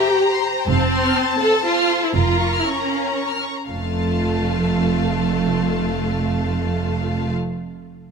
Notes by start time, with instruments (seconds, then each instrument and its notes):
Already playing: viola section G4, violin section C5 A#5
0.08 violin section G5
0.21 violin section A#5
0.33 violin section C6
0.46 violin section A#5
0.58 violin section G5
0.67 double bass section F1, cello section F2, viola section C4, violin section F5 A5
0.80 violin section A5
0.92 violin section C6
1.04 violin section F6
1.16 violin section C6
1.29 violin section A5
1.41 viola section A4, violin section F5
1.52 violin section A5
1.65 viola section F4, violin section C6
1.78 violin section F6
1.89 violin section C6
2.03 viola section E4, violin section A5
2.14 double bass section F1, cello section F2, viola section F4, violin section A#4 F5 A#5
2.26 violin section A#5
2.40 violin section C#6
2.53 violin section F6
2.58 viola section E4
2.65 viola section C#4, violin section C#6
2.79 violin section A#5
2.91 violin section F5
3.04 violin section A#5
3.16 violin section C#6
3.29 violin section F6
3.42 violin section C#6
3.56 violin section A#5
3.69 double bass section F1, cello section F2, viola section A3, violin section F4 F5 A5